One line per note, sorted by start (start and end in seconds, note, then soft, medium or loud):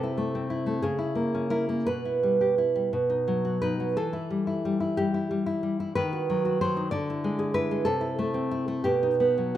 0.00 0.81 C3 medium
0.00 0.49 E4 soft
0.00 0.80 A4 medium
0.18 0.65 A3 soft
0.35 0.84 C4 soft
0.50 0.84 E4 soft
0.66 0.84 A3 soft
0.82 1.84 C#3 medium
0.82 1.48 G#4 medium
0.99 1.50 E4 soft
1.15 1.68 A#3 soft
1.35 1.88 C#4 soft
1.50 1.87 E4 soft
1.50 1.85 A#4 medium
1.69 1.87 A#3 soft
1.87 2.91 B2 soft
1.87 3.59 B4 medium
2.05 2.41 E4 soft
2.23 2.74 G3 soft
2.41 2.58 G4 soft
2.58 2.93 E4 soft
2.76 2.93 G3 soft
2.93 3.95 B2 soft
3.10 3.62 D#4 soft
3.28 3.79 F#3 soft
3.45 3.96 F#4 soft
3.62 3.98 D#4 soft
3.62 3.96 B4 medium
3.80 3.97 F#3 soft
3.97 5.93 E3 soft
3.97 4.94 A4 medium
4.13 4.46 E4 soft
4.30 4.64 G3 soft
4.47 4.79 E4 soft
4.65 4.97 G3 soft
4.80 5.13 E4 soft
4.97 5.30 G3 soft
4.97 5.93 G4 medium
5.14 5.45 E4 soft
5.31 5.62 G3 soft
5.46 5.79 E4 soft
5.63 5.97 G3 soft
5.80 5.95 E4 soft
5.95 6.91 D#3 medium
5.95 6.59 B4 medium
6.13 6.44 F#4 soft
6.30 6.60 F#3 soft
6.45 6.94 F#4 soft
6.61 6.92 F#3 soft
6.61 6.91 C5 medium
6.77 6.94 D#4 soft
6.91 7.83 D3 medium
6.91 7.52 D5 medium
7.10 7.53 E4 soft
7.24 7.70 G#3 soft
7.39 7.84 G#4 medium
7.54 7.86 E4 soft
7.54 7.85 B4 medium
7.71 7.87 G#3 soft
7.85 8.81 C3 medium
7.85 8.79 A4 medium
8.01 8.50 E4 soft
8.19 8.67 A3 soft
8.34 8.84 C4 soft
8.51 8.85 E4 soft
8.68 8.85 A3 soft
8.84 9.57 B2 medium
8.84 9.52 G4 medium
9.03 9.54 D#4 soft
9.20 9.57 B3 soft
9.38 9.57 F#3 soft